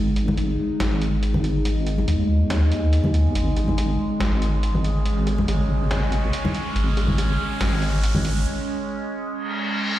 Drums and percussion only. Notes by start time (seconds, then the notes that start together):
0.16 closed hi-hat
0.28 high conga, low conga
0.37 closed hi-hat
0.80 snare, closed hi-hat, high conga
1.02 closed hi-hat
1.23 closed hi-hat
1.34 high conga, low conga
1.44 closed hi-hat
1.65 closed hi-hat
1.87 closed hi-hat
1.98 high conga, low conga
2.08 closed hi-hat
2.50 snare, closed hi-hat, high conga
2.72 closed hi-hat
2.93 closed hi-hat
3.04 high conga, low conga
3.14 closed hi-hat
3.35 closed hi-hat
3.57 closed hi-hat, high bongo
3.68 high conga, low conga
3.77 closed hi-hat, high bongo
4.20 snare, closed hi-hat, high conga
4.42 closed hi-hat
4.63 closed hi-hat
4.75 high conga, low conga
4.84 closed hi-hat
5.06 closed hi-hat
5.27 closed hi-hat, high bongo
5.38 high conga, low conga
5.48 closed hi-hat, high bongo
5.90 snare, closed hi-hat, high conga
6.12 closed hi-hat
6.33 closed hi-hat
6.45 high conga, low conga
6.55 closed hi-hat
6.76 closed hi-hat
6.97 closed hi-hat, high bongo
7.08 high conga, low conga
7.18 closed hi-hat, high bongo
7.61 snare, closed hi-hat, high conga
7.82 closed hi-hat
8.03 closed hi-hat
8.15 high conga, low conga
8.25 closed hi-hat